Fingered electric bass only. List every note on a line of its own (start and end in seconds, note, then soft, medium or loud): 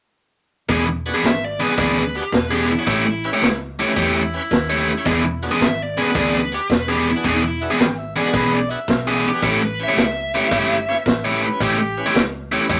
0.69 1.10 E1 medium
1.23 1.65 G#1 medium
1.78 2.19 D2 medium
2.33 2.74 E1 medium
2.87 3.28 A1 medium
3.42 3.83 C#2 medium
3.96 4.38 E2 medium
4.51 4.93 D#2 medium
5.06 5.47 E1 medium
5.60 6.02 G#1 medium
6.15 6.56 D2 medium
6.70 7.11 E1 medium
7.24 7.65 E1 medium
7.79 8.20 G#1 medium
8.34 8.75 B1 medium
8.88 9.29 B1 medium
9.42 9.84 A1 medium
9.97 10.38 C#2 medium
10.52 10.93 G1 medium
11.06 11.47 A1 medium
11.60 12.02 A1 medium
12.15 12.56 C#2 medium
12.69 12.80 E2 medium